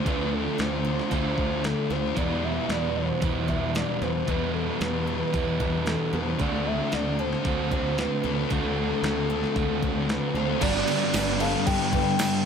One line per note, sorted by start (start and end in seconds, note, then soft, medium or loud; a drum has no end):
0.00 0.83 C4 medium
0.00 1.11 G4 medium
0.04 0.47 D2 medium
0.04 1.09 D3 medium
0.04 1.88 D3 medium
0.04 0.57 F3 medium
0.04 1.10 A3 medium
0.04 1.89 A3 medium
0.04 1.12 D4 medium
0.04 1.90 D4 medium
0.04 1.11 F4 medium
0.04 0.35 B4 medium
0.04 kick loud
0.04 open hi-hat soft
0.34 0.61 A4 medium
0.58 1.00 D2 medium
0.58 1.91 F3 medium
0.58 1.66 C5 medium
0.58 snare medium
0.58 open hi-hat soft
0.85 1.89 C4 medium
0.99 snare soft
1.10 1.73 D2 medium
1.10 2.14 D3 medium
1.10 2.16 A3 medium
1.10 2.17 D4 medium
1.10 1.64 G4 medium
1.10 kick loud
1.10 open hi-hat soft
1.14 2.17 F4 medium
1.38 kick medium
1.64 3.21 G4 medium
1.64 1.93 A4 medium
1.64 snare loud
1.64 open hi-hat medium
1.90 2.11 D2 medium
1.90 2.17 D3 medium
1.90 2.16 A3 medium
1.90 2.17 C4 medium
1.90 2.19 D4 medium
1.90 2.18 C5 medium
1.90 snare soft
2.15 4.00 E2 medium
2.15 2.58 E2 medium
2.15 4.01 B2 medium
2.15 3.20 E3 medium
2.15 4.00 E3 medium
2.15 3.22 G3 medium
2.15 2.69 B3 medium
2.15 3.23 B3 medium
2.15 2.46 D5 medium
2.15 kick medium
2.15 open hi-hat soft
2.19 3.24 E4 medium
2.44 2.72 E5 loud
2.69 3.10 E2 medium
2.69 4.00 B3 medium
2.69 2.98 D5 medium
2.69 snare medium
2.69 open hi-hat medium
2.96 3.48 C5 medium
3.21 3.84 E2 medium
3.21 4.26 E3 medium
3.21 4.28 G3 medium
3.21 4.27 B3 medium
3.21 3.74 G4 medium
3.21 kick loud
3.21 open hi-hat medium
3.25 4.28 E4 medium
3.48 5.60 D4 medium
3.48 3.76 E5 loud
3.48 kick medium
3.75 5.33 G4 medium
3.75 4.03 D5 medium
3.75 snare loud
3.75 open hi-hat medium
4.02 4.22 E2 medium
4.02 4.27 E2 medium
4.02 4.27 B2 medium
4.02 4.27 E3 medium
4.02 4.27 B3 medium
4.02 4.30 C5 medium
4.02 snare soft
4.27 6.11 E2 medium
4.27 4.69 E2 medium
4.27 6.12 B2 loud
4.27 5.31 E3 medium
4.27 6.12 E3 medium
4.27 5.34 G3 medium
4.27 4.80 B3 medium
4.27 5.33 B3 medium
4.27 5.33 E4 medium
4.27 4.54 B4 medium
4.27 kick loud
4.27 open hi-hat soft
4.54 4.82 A4 medium
4.81 5.22 E2 medium
4.81 5.06 B3 medium
4.81 5.88 B4 medium
4.81 snare medium
4.81 open hi-hat soft
5.07 6.12 B3 medium
5.32 5.95 E2 medium
5.32 6.37 E3 medium
5.32 6.39 G3 medium
5.32 6.39 B3 medium
5.32 5.85 G4 medium
5.32 kick loud
5.32 open hi-hat medium
5.36 6.39 E4 medium
5.60 7.71 D4 medium
5.60 kick medium
5.86 6.42 G4 medium
5.86 6.16 A4 medium
5.86 snare loud
5.86 open hi-hat soft
6.13 6.34 E2 medium
6.13 6.39 E2 medium
6.13 6.39 B2 medium
6.13 6.38 E3 medium
6.13 6.39 B3 medium
6.13 6.42 C5 medium
6.38 6.80 D2 loud
6.38 7.43 D3 medium
6.38 8.23 D3 medium
6.38 6.91 A3 medium
6.38 7.44 A3 medium
6.38 8.24 A3 medium
6.38 7.45 C4 medium
6.38 8.23 D4 loud
6.38 6.68 D5 medium
6.38 kick medium
6.38 open hi-hat soft
6.43 7.45 F#4 medium
6.67 6.95 E5 medium
6.92 7.34 D2 medium
6.92 7.19 A3 medium
6.92 7.21 D5 medium
6.92 snare medium
6.92 open hi-hat soft
7.19 8.23 A3 medium
7.19 8.00 C5 loud
7.33 snare soft
7.43 8.06 D2 medium
7.43 8.48 D3 medium
7.43 8.50 A3 medium
7.43 8.49 C4 medium
7.43 kick loud
7.43 open hi-hat medium
7.47 8.50 F#4 medium
7.71 9.03 C4 medium
7.71 kick medium
7.98 8.51 B4 medium
7.98 snare loud
7.98 open hi-hat medium
8.24 8.45 D2 medium
8.24 8.49 D3 medium
8.24 8.49 A3 medium
8.24 8.51 A3 medium
8.24 8.52 D4 medium
8.49 8.91 D2 medium
8.49 9.53 D3 medium
8.49 10.33 D3 medium
8.49 9.02 A3 medium
8.49 9.54 A3 medium
8.49 10.34 A3 medium
8.49 9.55 C4 medium
8.49 10.33 D4 medium
8.49 9.56 F#4 medium
8.49 10.05 A4 medium
8.49 kick medium
8.49 open hi-hat soft
9.03 9.44 D2 medium
9.03 9.29 A3 medium
9.03 snare loud
9.03 open hi-hat soft
9.30 10.34 A3 medium
9.44 snare soft
9.54 10.17 D2 medium
9.54 10.59 D3 medium
9.54 10.60 A3 medium
9.54 10.61 C4 medium
9.54 kick loud
9.54 open hi-hat soft
9.59 10.61 F#4 medium
9.83 10.62 C4 medium
9.83 kick medium
10.09 10.37 B4 medium
10.09 snare loud
10.09 open hi-hat medium
10.35 10.55 D2 medium
10.35 10.61 D3 medium
10.35 10.61 A3 medium
10.35 10.60 A3 medium
10.35 10.60 D4 medium
10.35 10.63 C5 medium
10.35 snare soft
10.60 10.82 G1 loud
10.60 12.45 G2 medium
10.60 11.12 G2 medium
10.60 12.45 D3 medium
10.60 11.13 D3 loud
10.60 10.87 G3 medium
10.60 12.45 G3 medium
10.60 11.14 G3 loud
10.60 12.45 B3 medium
10.60 11.41 D5 loud
10.60 kick loud
10.60 crash loud
10.60 crash medium
10.64 12.45 D4 loud
10.88 12.19 G3 medium
10.88 crash medium
11.02 snare soft
11.13 11.55 G1 medium
11.13 11.66 G2 medium
11.13 11.41 D3 medium
11.13 11.38 G3 medium
11.13 11.92 B3 medium
11.13 snare loud
11.13 tambourine loud
11.13 crash medium
11.40 12.18 D3 medium
11.40 12.20 G3 medium
11.40 12.45 A4 medium
11.40 11.66 F5 loud
11.40 crash medium
11.67 12.45 G2 medium
11.67 12.45 D4 medium
11.67 12.45 G5 loud
11.67 kick loud
11.67 crash medium
11.93 12.45 B3 medium
11.93 kick medium
11.93 crash medium
12.18 12.45 G2 medium
12.18 12.45 D3 medium
12.18 12.45 G3 medium
12.18 12.44 G3 medium
12.18 snare loud
12.18 tambourine loud
12.18 crash medium